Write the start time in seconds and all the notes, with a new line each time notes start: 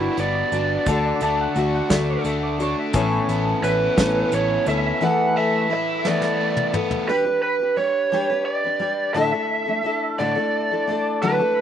Already playing: G3 B3 D4 E4 F#4 B4
0.17 G1 B3 D5, closed hi-hat
0.52 G1 D4 F#4 B4, closed hi-hat
0.86 D2 D3 A3 D4 F#4 A4 D5, kick, closed hi-hat
1.21 D2 A3 A5, closed hi-hat
1.41 F#5
1.55 D2 A3 D4 F#4 A4 E5, closed hi-hat
1.75 F#5
1.89 D2 D3 A3 D4 F#4 A4 E5, kick, snare, closed hi-hat
2.10 D5
2.25 D2 A3 E5, closed hi-hat
2.43 D5
2.58 D4 F#4 A4, closed hi-hat
2.62 C#5
2.79 E5
2.93 A1 A2 E3 B3 C#4 E4 A4 B4 C#5, kick, closed hi-hat
3.28 A1 B3 A4, closed hi-hat
3.62 A1 B3 C#4 E4 A4 B4, closed hi-hat
3.96 A1 A2 E3 B3 C#4 E4 A4, kick, snare, closed hi-hat
4.32 A1 B3 C#5, closed hi-hat
4.66 D2 B3 C#4 E4 A4 E5, closed hi-hat
5.01 E2 E3 A3 E4 A4 B4 E5 F#5
5.37 A3 E5
5.69 A3 E4 A4 B4
5.74 E5
6.05 E3 A3 B3 E4 A4 B4 D5, snare
6.22 snare
6.41 A3
6.57 mid tom
6.73 B3 E4 A4 B4, mid tom
6.91 floor tom
7.09 G3 D4 G4 B4
7.25 D4 G4 B4
7.42 B4
7.59 D4 G4 B4
7.77 G3 D4 G4 B4 C#5
8.12 G3 D4 G4 B4
8.30 D4 G4 B4
8.45 D5
8.64 D4 G4 B4
8.79 G3 D4 G4 B4
9.14 A2 D3 A3 D4 E4 A4 E5
9.32 A3 D4 E4 A4
9.66 A3 D4 E4 A4
9.83 A3 D4 E4 A4
10.18 A2 D3 A3 D4 E4 A4 D5
10.35 A3 D4 E4 A4
10.71 A3 D4 E4 A4
10.87 A3 D4 E4 A4
11.22 D3 F#3 A3 D4 E4 A4 B4
11.39 A3 D4 E4 A4